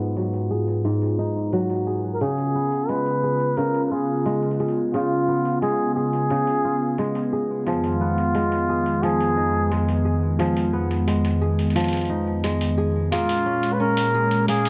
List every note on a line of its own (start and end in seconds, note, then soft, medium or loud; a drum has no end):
0.00 0.83 G#2 medium
0.00 2.17 G#2 medium
0.00 0.15 F#3 medium
0.00 2.28 B3 medium
0.00 1.18 D#4 medium
0.00 2.18 F4 medium
0.00 0.50 G#4 medium
0.00 2.17 B4 medium
0.00 open hi-hat soft
0.17 1.52 F#3 medium
0.17 open hi-hat soft
0.34 open hi-hat soft
0.50 1.86 G#4 medium
0.68 open hi-hat soft
0.85 2.26 G#2 medium
0.85 open hi-hat medium
1.02 open hi-hat soft
1.19 2.81 D#4 medium
1.53 2.26 F#3 medium
1.53 open hi-hat medium
1.70 open hi-hat soft
1.87 2.21 G#4 medium
2.14 2.23 A#4 medium
2.21 7.62 C#3 medium
2.21 3.56 C#3 medium
2.21 13.08 B3 medium
2.21 7.62 F4 medium
2.21 3.23 G#4 medium
2.21 2.91 G#4 medium
2.21 open hi-hat soft
2.38 open hi-hat soft
2.55 5.27 B3 medium
2.72 open hi-hat soft
2.89 4.25 G#3 medium
2.89 3.59 B4 loud
2.89 open hi-hat medium
3.06 open hi-hat soft
3.23 4.59 G#4 medium
3.40 open hi-hat soft
3.57 4.93 C#3 medium
3.57 3.85 A#4 medium
3.57 open hi-hat medium
3.74 open hi-hat soft
3.85 3.93 A#4 medium
3.91 6.63 F4 medium
3.91 4.60 G#4 medium
4.26 5.62 G#3 medium
4.26 open hi-hat medium
4.43 open hi-hat soft
4.51 open hi-hat soft
4.60 4.94 G#4 medium
4.60 open hi-hat soft
4.68 open hi-hat soft
4.94 6.29 C#3 medium
4.94 5.58 F4 medium
4.94 5.96 G#4 medium
4.94 open hi-hat soft
5.28 7.73 B3 soft
5.45 open hi-hat soft
5.62 6.98 G#3 medium
5.62 5.94 G#4 medium
5.62 open hi-hat medium
5.95 7.28 G#4 medium
5.95 7.32 G#4 medium
6.13 open hi-hat soft
6.30 7.72 C#3 medium
6.30 open hi-hat medium
6.47 open hi-hat soft
6.65 8.16 F4 medium
6.98 8.34 G#3 medium
6.98 open hi-hat medium
7.15 open hi-hat soft
7.33 7.67 G#4 medium
7.66 13.08 F2 medium
7.66 13.08 D#3 medium
7.66 9.03 F3 medium
7.66 13.08 G#3 medium
7.66 9.04 F4 medium
7.66 8.69 G#4 medium
7.66 open hi-hat medium
7.84 open hi-hat soft
8.01 10.72 B3 medium
8.18 open hi-hat soft
8.35 9.71 G#3 medium
8.35 open hi-hat medium
8.52 open hi-hat soft
8.69 10.05 G#4 medium
8.86 open hi-hat soft
9.03 10.39 F3 medium
9.03 10.05 G#4 loud
9.03 open hi-hat soft
9.20 open hi-hat soft
9.37 12.08 D#4 medium
9.71 11.07 G#3 medium
9.71 open hi-hat medium
9.89 open hi-hat soft
10.05 10.39 G#4 medium
10.39 11.75 F3 medium
10.39 11.41 G#4 medium
10.39 open hi-hat medium
10.57 open hi-hat soft
10.73 13.19 B3 soft
10.91 open hi-hat soft
11.07 12.43 G#3 medium
11.07 open hi-hat medium
11.25 open hi-hat soft
11.41 12.77 G#4 medium
11.59 open hi-hat soft
11.70 open hi-hat soft
11.75 14.05 F3 medium
11.75 open hi-hat medium
11.80 open hi-hat soft
11.84 open hi-hat soft
11.88 open hi-hat soft
11.93 open hi-hat soft
11.97 open hi-hat soft
12.01 open hi-hat soft
12.05 open hi-hat soft
12.10 13.72 D#4 medium
12.44 13.18 G#3 medium
12.44 open hi-hat medium
12.61 open hi-hat soft
12.78 13.12 G#4 medium
13.12 14.69 A#2 medium
13.12 14.69 G#3 medium
13.12 14.48 A#3 medium
13.12 14.69 C#4 medium
13.12 13.75 F4 medium
13.12 14.14 G#4 medium
13.12 open hi-hat medium
13.29 open hi-hat soft
13.46 13.79 C#4 medium
13.63 open hi-hat soft
13.73 13.82 B4 medium
13.80 14.69 C#4 medium
13.80 14.48 A#4 loud
13.97 open hi-hat medium
14.14 14.69 G#4 medium
14.31 open hi-hat soft
14.48 14.69 A#3 medium
14.48 14.69 G#4 medium
14.48 open hi-hat medium
14.65 open hi-hat soft